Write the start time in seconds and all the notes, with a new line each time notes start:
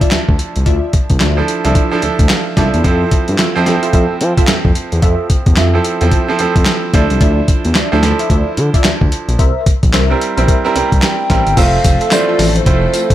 Already playing: F3 D4 E4 A4
0.01 F4 D5 E5, kick, closed hi-hat
0.11 D2, snare, clap, closed hi-hat
0.29 D2, kick
0.39 closed hi-hat
0.56 C2, closed hi-hat
0.66 D2 F4 D5 E5, kick, closed hi-hat
0.93 kick, closed hi-hat
1.10 C2, kick, closed hi-hat
1.20 D2 F4 D5 E5, snare, clap, closed hi-hat
1.37 F3 D4 E4 A4
1.48 closed hi-hat
1.64 C2 F3 D4 E4 F4 A4 D5 E5, closed hi-hat
1.75 kick, closed hi-hat
1.91 F3 D4 E4 A4
2.02 D2 F3 D4 E4 A4, closed hi-hat
2.19 D2, kick, closed hi-hat
2.29 F5, snare, clap, closed hi-hat
2.57 C2 F3 D4 E4 F4 A4 D5 E5 A5, kick, snare, closed hi-hat
2.74 E2, closed hi-hat
2.84 F2 F3 C4 E4 F4 A4 E5, kick, closed hi-hat
3.11 kick, closed hi-hat
3.28 G2, closed hi-hat
3.38 F2 F4 A4 E5, snare, clap, closed hi-hat
3.56 F2 F3 C4 E4 A4
3.66 F3 C4 E4 A4, snare, closed hi-hat
3.83 F4 A4 E5, closed hi-hat
3.93 F2 F4 A4 E5, kick, closed hi-hat
4.21 F3, closed hi-hat
4.37 F4 A4 E5, kick, closed hi-hat
4.47 F2, snare, clap, closed hi-hat
4.65 F2, kick
4.75 closed hi-hat
4.92 E2, closed hi-hat
5.02 F2 F4 A4 E5, kick, closed hi-hat
5.30 kick, closed hi-hat
5.46 E2, kick, closed hi-hat
5.56 F2 F4 A4 E5, snare, clap, closed hi-hat
5.74 F3 C4 E4 A4
5.84 closed hi-hat
6.01 E2 F3 C4 E4 F4 A4 E5, closed hi-hat
6.11 kick, closed hi-hat
6.28 F3 C4 E4 A4
6.39 F2 F3 C4 E4 A4, closed hi-hat
6.56 F2, kick, closed hi-hat
6.65 snare, clap, closed hi-hat
6.94 D2 F3 D4 E4 F4 A4 D5 E5, kick, closed hi-hat
7.10 C2, closed hi-hat
7.21 D2 F4 D5 E5, kick, closed hi-hat
7.48 kick, closed hi-hat
7.65 E2, closed hi-hat
7.75 D2 F4 D5 E5, snare, clap, closed hi-hat
7.92 D2 F3 D4 E4 A4
8.03 F3 D4 E4 A4, snare, closed hi-hat
8.19 F4 D5 E5, closed hi-hat
8.30 D2 F4 D5 E5, kick, closed hi-hat
8.57 D3, closed hi-hat
8.74 F4 D5 E5, kick, closed hi-hat
8.84 D2, snare, clap, closed hi-hat
9.01 D2, kick
9.12 closed hi-hat
9.29 A#1, closed hi-hat
9.39 C2 A#4 C5 E5, kick, closed hi-hat
9.66 kick, closed hi-hat
9.83 A#1, kick, closed hi-hat
9.93 C2 A#4 C5 E5, snare, clap, closed hi-hat
10.10 G3 C4 E4 A#4
10.21 closed hi-hat
10.37 A#1 G3 C4 E4 A#4 C5 E5, closed hi-hat
10.48 kick, closed hi-hat
10.65 G3 C4 E4 A#4
10.75 C2 G3 C4 E4 A#4, closed hi-hat
10.92 C2, kick, closed hi-hat
11.02 G5, snare, clap, closed hi-hat
11.30 A1 G3 C4 E4 A#4 C5 E5, kick, snare, closed hi-hat
11.47 G1, closed hi-hat
11.57 F1 F3 A3 C4 F4 A4 C5 E5 F5, kick, closed hi-hat, crash, tambourine
11.84 F1, kick, closed hi-hat, tambourine
12.01 F4 A4 E5, closed hi-hat
12.11 A3 C4 E4 F4 C5 D5, snare, clap, closed hi-hat, tambourine
12.28 F4 A4 E5
12.39 A1, snare, open hi-hat, tambourine
12.56 C5, closed hi-hat
12.66 F1 A3 C4 E4 F4 C5, kick, closed hi-hat
12.93 F4 A4 E5, closed hi-hat, tambourine
13.10 F1, kick, closed hi-hat